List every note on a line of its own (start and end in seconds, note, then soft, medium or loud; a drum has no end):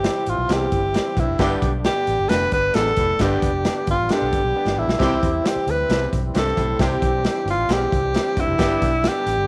0.00 0.23 C3 medium
0.00 1.36 E3 medium
0.00 4.96 G3 medium
0.00 1.36 C4 medium
0.00 0.33 C4 medium
0.00 1.36 E4 medium
0.00 0.33 E4 medium
0.00 0.31 G4 loud
0.04 0.33 G4 medium
0.04 snare loud
0.04 closed hi-hat loud
0.26 0.35 A1 medium
0.26 0.54 F4 medium
0.26 closed hi-hat medium
0.38 0.46 B1 medium
0.49 0.66 C2 loud
0.49 0.67 E2 medium
0.49 0.78 C4 medium
0.49 0.78 E4 medium
0.49 0.78 G4 medium
0.49 1.21 G4 medium
0.49 snare loud
0.49 closed hi-hat medium
0.72 0.96 G1 medium
0.72 kick medium
0.72 closed hi-hat medium
0.94 1.23 C4 medium
0.94 1.23 E4 medium
0.94 1.23 G4 medium
0.94 snare loud
0.94 closed hi-hat medium
1.17 1.25 B1 loud
1.17 1.35 G2 medium
1.17 1.59 E4 medium
1.17 kick medium
1.17 closed hi-hat medium
1.28 1.36 F1 loud
1.39 1.55 G1 loud
1.39 1.57 G2 loud
1.39 2.02 G2 medium
1.39 4.97 D3 medium
1.39 1.68 B3 loud
1.39 1.71 B3 loud
1.39 4.97 B3 medium
1.39 1.68 D4 loud
1.39 1.72 D4 loud
1.39 4.97 D4 medium
1.39 1.68 G4 loud
1.39 1.72 G4 loud
1.39 kick loud
1.39 snare loud
1.39 closed hi-hat medium
1.62 1.86 B1 loud
1.62 kick medium
1.62 closed hi-hat medium
1.84 2.13 B3 medium
1.84 2.13 D4 medium
1.84 2.31 G4 loud
1.84 2.14 G4 medium
1.84 snare loud
1.84 closed hi-hat loud
2.07 2.15 A1 medium
2.07 closed hi-hat medium
2.19 2.27 G1 medium
2.29 2.46 F1 loud
2.29 2.47 D2 medium
2.29 2.58 B3 medium
2.29 2.58 D4 medium
2.29 2.58 G4 medium
2.29 2.52 B4 loud
2.29 snare loud
2.29 closed hi-hat loud
2.52 2.68 G1 medium
2.52 2.76 B4 loud
2.52 kick medium
2.52 closed hi-hat medium
2.74 2.91 A1 medium
2.74 2.93 E2 medium
2.74 3.03 B3 medium
2.74 3.04 D4 medium
2.74 3.04 G4 medium
2.74 3.23 A4 loud
2.74 snare loud
2.74 closed hi-hat medium
2.86 snare soft
2.96 3.13 F1 medium
2.96 3.16 A2 medium
2.96 kick medium
2.96 closed hi-hat medium
3.19 3.35 G1 loud
3.19 3.83 G2 medium
3.19 3.38 G2 loud
3.19 3.48 B3 loud
3.19 3.48 D4 loud
3.19 3.49 G4 loud
3.19 3.88 G4 medium
3.19 kick loud
3.19 snare loud
3.19 closed hi-hat medium
3.42 3.67 F1 loud
3.42 kick loud
3.42 closed hi-hat medium
3.65 3.94 B3 medium
3.65 3.94 D4 medium
3.65 3.94 G4 medium
3.65 snare loud
3.65 closed hi-hat medium
3.87 3.96 G1 medium
3.87 4.13 F4 loud
3.87 kick medium
3.87 closed hi-hat medium
3.99 4.07 A1 medium
4.09 4.28 G2 medium
4.09 4.38 B3 medium
4.09 4.39 D4 medium
4.09 4.80 G4 loud
4.09 4.39 A4 medium
4.09 snare loud
4.09 closed hi-hat medium
4.22 4.29 B1 medium
4.33 4.41 G1 medium
4.33 kick medium
4.33 closed hi-hat medium
4.44 4.52 B1 medium
4.56 4.84 B3 medium
4.56 4.84 D4 medium
4.56 4.84 G4 medium
4.66 4.74 G1 loud
4.66 snare medium
4.77 4.85 A1 medium
4.77 4.95 E2 medium
4.77 5.50 E4 medium
4.88 4.96 B1 medium
4.88 snare loud
4.99 5.16 C2 loud
4.99 5.63 C3 medium
4.99 5.18 C3 loud
4.99 8.56 E3 medium
4.99 8.56 G3 medium
4.99 5.28 C4 loud
4.99 5.31 C4 medium
4.99 8.56 C4 medium
4.99 5.28 E4 loud
4.99 5.31 E4 loud
4.99 6.78 E4 medium
4.99 5.28 G4 loud
4.99 5.32 G4 loud
4.99 kick loud
4.99 snare loud
4.99 splash medium
5.23 5.39 E2 medium
5.23 kick loud
5.23 closed hi-hat medium
5.44 5.73 C4 medium
5.44 5.73 E4 medium
5.44 5.73 G4 medium
5.44 snare loud
5.44 closed hi-hat loud
5.48 5.72 G4 medium
5.56 muted fingered electric bass stroke soft
5.67 5.83 D2 medium
5.67 6.09 B4 loud
5.67 closed hi-hat medium
5.89 6.06 C2 loud
5.89 6.07 E2 medium
5.89 6.18 C4 medium
5.89 6.18 E4 medium
5.89 6.19 G4 medium
5.89 snare loud
5.89 closed hi-hat medium
6.13 6.29 B1 medium
6.13 kick medium
6.13 closed hi-hat medium
6.34 6.51 C2 loud
6.34 6.53 G2 medium
6.34 6.63 C4 medium
6.34 6.63 E4 medium
6.34 6.64 G4 medium
6.34 snare loud
6.34 closed hi-hat medium
6.38 6.82 A4 medium
6.48 snare soft
6.56 6.74 B1 medium
6.56 6.75 A2 medium
6.56 kick medium
6.56 closed hi-hat medium
6.79 6.96 C2 loud
6.79 6.97 C3 loud
6.79 7.23 C4 loud
6.79 7.09 E4 loud
6.79 7.48 G4 medium
6.79 7.09 G4 loud
6.79 kick loud
6.79 snare loud
6.79 closed hi-hat medium
7.02 7.26 B1 medium
7.02 kick loud
7.02 closed hi-hat medium
7.24 7.53 C4 medium
7.24 7.54 E4 medium
7.24 7.54 G4 medium
7.24 snare loud
7.24 closed hi-hat medium
7.45 7.54 G1 medium
7.45 closed hi-hat medium
7.50 7.74 F4 loud
7.58 7.66 A1 loud
7.68 7.85 B1 medium
7.68 7.87 E2 medium
7.68 7.99 C4 medium
7.68 7.99 E4 medium
7.68 7.99 G4 medium
7.68 8.42 G4 loud
7.68 snare loud
7.68 closed hi-hat loud
7.92 8.16 C2 medium
7.92 kick medium
7.92 closed hi-hat medium
8.14 8.43 C4 medium
8.14 8.43 E4 medium
8.14 8.44 G4 medium
8.14 snare loud
8.14 closed hi-hat medium
8.37 8.45 G1 medium
8.37 8.55 G2 medium
8.37 9.10 E4 loud
8.37 kick medium
8.37 closed hi-hat medium
8.47 8.56 F1 loud
8.58 8.76 G1 loud
8.58 8.76 G2 loud
8.58 9.23 G2 medium
8.58 9.47 D3 medium
8.58 9.47 G3 medium
8.58 8.88 B3 loud
8.58 8.91 B3 loud
8.58 8.91 D4 medium
8.58 8.88 D4 loud
8.58 8.91 G4 loud
8.58 8.88 G4 loud
8.58 kick loud
8.58 snare loud
8.58 closed hi-hat medium
8.82 9.06 B1 loud
8.82 kick medium
8.82 closed hi-hat medium
9.04 9.33 B3 medium
9.04 9.33 D4 medium
9.04 9.33 G4 medium
9.04 snare loud
9.04 closed hi-hat medium
9.08 9.47 G4 loud
9.26 9.35 A1 medium
9.26 closed hi-hat medium
9.37 9.46 G1 medium